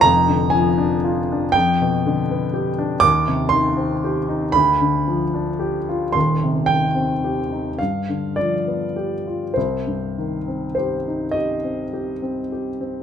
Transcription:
X:1
M:12/8
L:1/16
Q:3/8=37
K:Cm
V:1 name="Grand piano"
b2 a4 g6 d'2 c'4 =b6 | c'2 g4 f2 d4 c4 c2 e6 |]
V:2 name="Grand piano"
[F,,,F,,] D, F, D F D F,, =B,, D, =B, G D E,, C, E, C G E D,, D, F, D G F | [E,,,E,,] C, E, C G E G,, D, F, =B, G F C,, G,, E, C G E G C G C G C |]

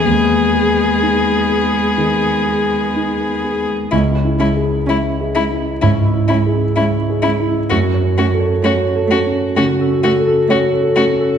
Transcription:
X:1
M:4/4
L:1/16
Q:1/4=63
K:C#m
V:1 name="Harp"
z16 | C G G G C2 G2 C E E E C E2 E | F c c c F2 c2 F A A A F A2 A |]
V:2 name="Grand piano"
D,,2 G2 D2 G2 D,2 G2 D2 G2 | (3C,,2 E2 G2 (3e2 G2 E2 (3G,,2 E2 G2 (3e2 G2 E2 | (3F,,2 C2 A2 (3c2 A2 C2 (3C,2 C2 A2 (3c2 A2 C2 |]
V:3 name="Violin"
G16 | E2 E2 E2 E2 E2 E2 E2 E2 | F2 F2 F2 F2 F2 F2 F2 F2 |]
V:4 name="Viola"
B,16 | C2 C2 C2 C2 C2 C2 C2 C2 | C2 C2 C2 C2 C2 C2 C2 C2 |]
V:5 name="Cello" clef=bass
G,16 | G,2 G,2 G,2 G,2 G,2 G,2 G,2 G,2 | A,2 A,2 A,2 A,2 A,2 A,2 A,2 A,2 |]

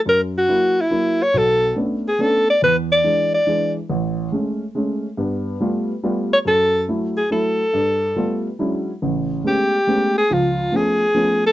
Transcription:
X:1
M:3/4
L:1/8
Q:"Swing" 1/4=141
K:F#m
V:1 name="Alto saxophone"
^A F2 E2 c | A2 z G A d | B d2 d2 z | z6 |
z4 z c | A2 z G A2- | A4 z2 | [K:A] z2 =G3 ^G |
^E2 G3 A |]
V:2 name="Upright piano"
F,,2 [F,^A,E] z [F,A,E] z | [B,,,B,,]2 [A,B,CD] z [A,B,CD] z | E,,2 [E,G,D] z [E,G,D] z | A,,,2 [G,A,C] z [G,A,C] z |
[=G,,B,]2 [=G,A,B,=F] z [G,A,B,F] z | F,,2 [F,A,E] z [F,A,E] z | =G,,2 [=G,A,B,=F] z [^F,^G,CDE] z | [K:A] [A,,,C,]2 [G,A,B,C] z [G,A,B,C] z |
[C,,^E,]2 [E,A,B,C] z [E,A,B,C] z |]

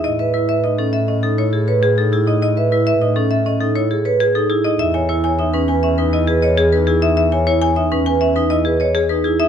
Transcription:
X:1
M:4/4
L:1/16
Q:1/4=101
K:E
V:1 name="Marimba"
d e B e d A e d A c G c G A G d | d e B e d A e d A c G c G A G d | e g c g e B g e B d G d G B G e | e g c g e B g e B d G d G B G e |]
V:2 name="Vibraphone"
E B E B D C A C D E A B G D E D | E B E B D C A C D E A B G D E D | E c E c D C B C D E B c G D E D | E c E c D C B C D E B c G D E D |]
V:3 name="Double bass" clef=bass
A,,16- | A,,16 | E,,16- | E,,16 |]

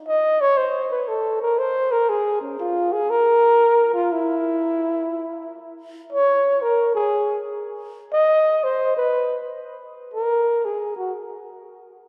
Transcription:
X:1
M:4/4
L:1/8
Q:"Swing" 1/4=119
K:Bbphr
V:1 name="Flugelhorn"
e d =c _c =A B =c B | A D F A B3 F | _F6 z2 | d2 B A2 z3 |
e2 =c _c2 z3 | B2 A G z4 |]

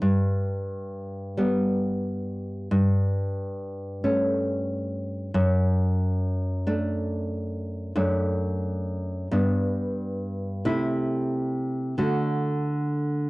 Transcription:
X:1
M:4/4
L:1/8
Q:1/4=90
K:D
V:1 name="Nylon-string guitar"
G,,4 [G,B,]4 | G,,4 [A,C]4 | F,,4 [A,D]4 | [K:Dmix] [F,,A,D]4 [G,,B,D]4 |
[C,A,E]4 [D,A,F]4 |]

